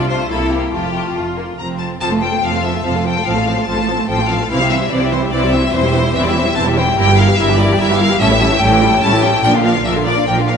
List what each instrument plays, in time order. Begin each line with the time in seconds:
Already playing: double bass section C2, cello section C3, viola section F4
0.08 violin section A3 F4 C5
0.29 double bass section C2, cello section C3, violin section A#3 E4 A4, viola section E4
0.51 violin section A#3 E4 G4
0.72 double bass section F1, cello section F2, violin section A3 F4 G4, viola section F4
0.93 violin section A3 F4
1.15 double bass section F1, cello section F2, violin section A3 F4
1.37 violin section A#3
1.58 double bass section F1, cello section F2, violin section C4 A#5
1.79 violin section A5
2.01 double bass section F1, cello section F2, viola section F3 C4, violin section A4 C5 A5
2.11 viola section A3, violin section F4 A4
2.22 viola section F3 C4, violin section A4 C5 G5
2.33 viola section A3, violin section F4 A4
2.43 double bass section F1, cello section F2, viola section F3 C4, violin section A4 C5 F5
2.53 viola section A3, violin section F4 A4
2.64 viola section F3 C4, violin section A4 C5 E5
2.74 viola section A3, violin section F4 A4
2.84 double bass section F1, cello section F2, viola section F3 C4, violin section A4 C5 F5
2.94 viola section A3, violin section F4 A4
3.04 viola section F3 C4, violin section A4 C5 G5
3.15 viola section A3, violin section F4 A4
3.25 double bass section A1, cello section A2, viola section F3 C4, violin section A4 C5 F5
3.36 viola section A3, violin section F4 A4
3.46 viola section F3 C4, violin section A4 C5
3.56 viola section A3, violin section F4 A4
3.66 double bass section A1, cello section A2, viola section F3 C4, violin section A4 C5 A5
3.77 viola section A3, violin section F4 A4
3.88 viola section F3 C4, violin section A4 C5
3.98 viola section A3, violin section F4 A4
4.08 double bass section A1, cello section A2, viola section F3 C4, violin section A4 C5 G5
4.19 viola section A3, violin section F4 A4
4.28 viola section F3 C4, violin section A4 C5 F5
4.39 viola section A3, violin section F4 A4
4.50 double bass section C2, cello section C3, viola section E3 C4, violin section E4 C5 F5
4.60 viola section G3 E4, violin section G4 E5
4.70 viola section E3 C4, violin section E4 C5 E5
4.81 viola section G3 E4, violin section G4 E5
4.91 double bass section C2, cello section C3, viola section E3 C4, violin section E4 C5 D5
5.01 viola section G3 E4, violin section G4 E5
5.11 viola section E3 C4, violin section E4 C5
5.22 viola section G3 E4, violin section G4 E5
5.31 double bass section C2, cello section C3, viola section E3 C4, violin section E4 C5 D5
5.43 viola section G3 E4, violin section G4 E5
5.53 viola section E3 C4, violin section E4 C5 E5
5.64 viola section G3 E4, violin section G4 E5
5.73 double bass section E1, cello section E2, viola section E3 C4, violin section E4 C5
5.83 viola section G3 E4, violin section G4 E5
5.94 viola section E3 C4, violin section E4 C5
6.04 viola section G3 E4, violin section G4 E5
6.14 double bass section E1, cello section E2, viola section E3 C4, violin section E4 C5 E5
6.22 viola section G3 E4, violin section D5
6.26 violin section G4 E5
6.35 viola section E3 C4, violin section E4 C5
6.45 viola section G3 E4, violin section G4 E5
6.56 double bass section E1, cello section E2, viola section E3 C4, violin section E4 C5 A5
6.66 viola section G3 E4, violin section G4 E5
6.77 viola section E3 C4, violin section E4 C5 G5
6.87 viola section G3 E4, violin section G4 E5
6.97 double bass section G1, cello section G2, viola section G3 E4, violin section E4 A#4 G5
7.07 viola section E3 G4, violin section G4
7.18 viola section G3 E4, violin section E4 A#4 F5
7.28 viola section E3 G4, violin section G4
7.38 double bass section G1, cello section G2, viola section G3 E4, violin section E4 A#4 E5
7.49 viola section E3 G4, violin section G4
7.58 viola section G3 E4, violin section E4 A#4 D5
7.69 viola section E3 G4, violin section G4
7.78 double bass section G1, cello section G2, viola section G3 E4, violin section E4 A#4 E5
7.90 viola section E3 G4, violin section G4
7.99 viola section G3 E4, violin section E4 A#4 F5
8.10 viola section E3 G4, violin section G4
8.20 double bass section A1, cello section A2, viola section G3 C#4, violin section E4 A4 E5
8.30 viola section E3 E4, violin section G4 C#5
8.41 viola section G3 C#4, violin section E4 A4
8.51 viola section E3 E4, violin section G4 C#5
8.61 double bass section A1, cello section A2, viola section G3 C#4, violin section E4 A4 G5
8.71 viola section E3 E4, violin section G4 C#5
8.81 viola section G3 C#4, violin section E4 A4
8.92 viola section E3 E4, violin section G4 C#5
9.02 double bass section A1, cello section A2, viola section G3 C#4, violin section E4 A4 A5
9.13 viola section E3 E4, violin section G4 C#5
9.22 viola section G3 C#4, violin section E4 A4 G5
9.33 viola section E3 E4, violin section G4 C#5
9.43 double bass section A#1, cello section A#2, viola section F3 D4, violin section A#4 D5 G5
9.53 viola section D3 A#3, violin section F4 F5
9.64 viola section F3 D4, violin section A#4 D5 F5
9.74 viola section D3 A#3, violin section F4 F5
9.84 double bass section A#1, cello section A#2, viola section F3 D4, violin section A#4 D5 E5
9.95 viola section D3 A#3, violin section F4 F5
10.05 viola section F3 D4, violin section A#4 D5
10.16 viola section D3 A#3, violin section F4 F5
10.27 double bass section A#1, cello section A#2, viola section F3 D4, violin section A#4 D5 G5
10.38 viola section D3 A#3, violin section F4 F5
10.48 viola section F3 D4, violin section A#4 D5 F5